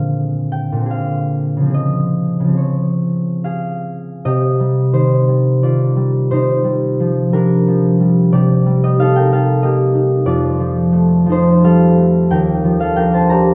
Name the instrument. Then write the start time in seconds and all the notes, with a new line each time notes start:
harp
Already playing: A#2 D3 C4 G#4 F5
0.52 G5
0.72 A#2
0.76 D3
0.81 C4
0.86 G#4
0.90 F5
1.57 C#3 F3
1.65 C4
1.70 G#4
1.74 D#5
2.40 C#3
2.44 F3
2.48 C4
2.52 G#4
2.58 C#5
3.44 G#4 F5
4.25 C3 G4 D#5
4.60 G3
4.93 D#3 D#4 C5
5.28 G3
5.63 D#3 F4 D5
5.96 G3
6.31 C3 D#4 C5
6.64 G3
7.00 F3
7.33 G3 D4 A#4
7.68 F3
8.00 G3
8.32 C3 G4 D5
8.66 G3
8.84 G4 D#5
8.98 D#4 A4 F5
9.16 A#4 G5
9.32 G3 A4 F5
9.63 A#3 G4 D#5
9.94 D#4
10.26 F2 F4 D5
10.60 F3
10.92 A3
11.26 F3 D#4
11.32 C5
11.64 G3 A4 F5
11.98 A3
12.30 D#2 A#4 G5
12.64 F3
12.80 A4 F5
12.96 D4 A#4 G5
13.14 C5 A5
13.30 G4 D5 A#5